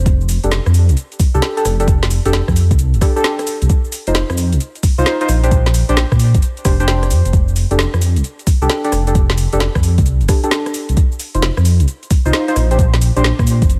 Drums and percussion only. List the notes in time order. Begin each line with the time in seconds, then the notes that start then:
0.06 kick, closed hi-hat, cabasa
0.21 cabasa
0.29 open hi-hat, cabasa
0.44 closed hi-hat, cabasa
0.51 snare, cabasa
0.66 cross-stick, cabasa
0.74 open hi-hat, cabasa
0.89 closed hi-hat, cabasa
0.97 closed hi-hat, cabasa
1.12 closed hi-hat, cabasa
1.20 kick, open hi-hat, cabasa
1.35 cabasa
1.42 snare, cabasa
1.57 closed hi-hat, cabasa
1.65 cross-stick, open hi-hat, cabasa
1.80 closed hi-hat, cabasa
1.88 kick, closed hi-hat, cabasa
2.03 snare, cabasa
2.10 open hi-hat, cabasa
2.25 closed hi-hat, cabasa
2.33 snare, cabasa
2.48 kick, cross-stick, cabasa
2.56 open hi-hat, cabasa
2.71 kick, closed hi-hat, cabasa
2.79 closed hi-hat, cabasa
2.94 closed hi-hat, cabasa
3.01 kick, cross-stick, open hi-hat, cabasa
3.17 closed hi-hat, cabasa
3.24 snare, cabasa
3.39 cross-stick, closed hi-hat, cabasa
3.47 open hi-hat, cabasa
3.62 closed hi-hat, cabasa
3.69 kick, closed hi-hat, cabasa
3.84 cabasa
3.92 open hi-hat, cabasa
4.07 closed hi-hat, cabasa
4.15 snare, cabasa
4.30 cross-stick, cabasa
4.38 open hi-hat, cabasa
4.53 closed hi-hat, cabasa
4.60 closed hi-hat, cabasa
4.75 closed hi-hat, cabasa
4.83 kick, open hi-hat, cabasa
4.98 cabasa
5.06 snare, cabasa
5.21 closed hi-hat, cabasa
5.29 cross-stick, open hi-hat, cabasa
5.44 closed hi-hat, cabasa
5.51 kick, closed hi-hat, cabasa
5.66 snare, cabasa
5.74 open hi-hat, cabasa
5.89 closed hi-hat, cabasa
5.97 snare, cabasa
6.12 kick, cross-stick, cabasa
6.19 open hi-hat, cabasa
6.34 kick, closed hi-hat, cabasa
6.42 closed hi-hat, cabasa
6.57 closed hi-hat, cabasa
6.65 kick, cross-stick, open hi-hat, cabasa
6.80 closed hi-hat, cabasa
6.88 snare, cabasa
7.03 cross-stick, closed hi-hat, cabasa
7.11 open hi-hat, cabasa
7.25 closed hi-hat, cabasa
7.33 kick, closed hi-hat, cabasa
7.48 cabasa
7.56 open hi-hat, cabasa
7.71 closed hi-hat, cabasa
7.79 snare, cabasa
7.94 cross-stick, cabasa
8.02 open hi-hat, cabasa
8.16 closed hi-hat, cabasa
8.24 closed hi-hat, cabasa
8.39 closed hi-hat, cabasa
8.47 kick, open hi-hat, cabasa
8.62 cabasa
8.70 snare, cabasa
8.84 closed hi-hat, cabasa
8.92 cross-stick, open hi-hat, cabasa
9.07 closed hi-hat, cabasa
9.15 kick, closed hi-hat, cabasa
9.30 snare, cabasa
9.38 open hi-hat, cabasa
9.53 closed hi-hat, cabasa
9.60 snare, cabasa
9.75 kick, cross-stick, cabasa
9.83 open hi-hat, cabasa
9.98 kick, closed hi-hat, cabasa
10.06 closed hi-hat, cabasa
10.21 closed hi-hat, cabasa
10.29 kick, cross-stick, open hi-hat, cabasa
10.43 closed hi-hat, cabasa
10.51 snare, cabasa
10.66 cross-stick, closed hi-hat, cabasa
10.74 open hi-hat, cabasa
10.89 closed hi-hat, cabasa
10.97 kick, closed hi-hat, cabasa
11.12 cabasa
11.19 open hi-hat, cabasa
11.35 closed hi-hat, cabasa
11.42 snare, cabasa
11.57 cross-stick, cabasa
11.65 open hi-hat, cabasa
11.80 closed hi-hat, cabasa
11.88 closed hi-hat, cabasa
12.03 closed hi-hat, cabasa
12.11 kick, open hi-hat, cabasa
12.26 cabasa
12.33 snare, cabasa
12.48 closed hi-hat, cabasa
12.56 cross-stick, open hi-hat, cabasa
12.71 closed hi-hat, cabasa
12.79 kick, closed hi-hat, cabasa
12.94 snare, cabasa
13.01 open hi-hat, cabasa
13.17 closed hi-hat, cabasa
13.24 snare, cabasa
13.39 kick, cross-stick, cabasa
13.47 open hi-hat, cabasa
13.62 kick, closed hi-hat, cabasa
13.70 closed hi-hat, cabasa